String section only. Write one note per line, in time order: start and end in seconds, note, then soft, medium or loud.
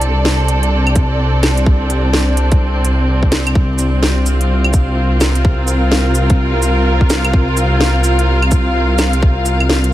0.00 9.93 C3 medium
0.00 9.93 C4 medium
0.00 5.30 D4 medium
0.00 3.55 A4 medium
0.00 5.33 D5 medium
4.11 9.93 F4 medium
4.30 9.93 F5 medium
4.94 9.93 A#4 medium